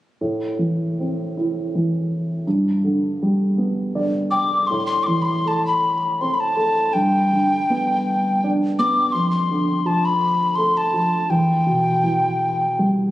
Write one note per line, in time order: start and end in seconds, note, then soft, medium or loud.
0.21 2.43 A2 soft
0.59 1.74 E3 soft
1.00 2.43 C4 soft
1.37 2.43 E4 soft
1.75 2.45 E3 soft
2.47 4.66 G2 medium
2.84 3.94 D3 soft
3.22 4.67 G3 soft
3.58 4.67 B3 soft
3.95 4.68 D3 soft
3.95 4.29 D5 medium
4.31 4.67 G5 soft
4.31 4.69 D6 medium
4.67 6.91 A2 soft
4.67 4.86 C6 medium
4.86 5.05 C6 medium
5.03 5.24 C6 medium
5.03 5.07 D6 soft
5.07 6.53 E3 soft
5.22 5.27 B5 medium
5.22 5.49 C6 medium
5.45 6.55 A3 soft
5.45 5.65 A5 medium
5.67 6.23 B5 medium
6.21 6.93 C4 soft
6.21 6.35 C6 medium
6.34 6.42 B5 soft
6.40 6.95 A5 medium
6.57 6.93 A3 soft
6.93 9.11 G2 soft
6.93 8.52 G5 medium
7.33 8.75 D3 soft
7.70 8.78 B3 soft
8.44 9.13 D4 soft
8.79 9.14 B3 soft
8.79 9.14 D6 medium
9.12 11.27 F2 soft
9.12 9.30 C6 medium
9.31 9.88 C6 medium
9.51 10.91 D3 soft
9.85 10.92 F3 soft
9.85 10.07 A5 medium
10.05 10.57 B5 medium
10.56 11.28 A3 soft
10.56 10.79 C6 medium
10.77 11.32 A5 medium
10.93 11.29 F3 soft
11.30 13.11 E2 soft
11.30 12.89 G5 medium
11.66 13.11 B2 soft
12.03 13.11 E3 soft
12.79 13.11 G3 soft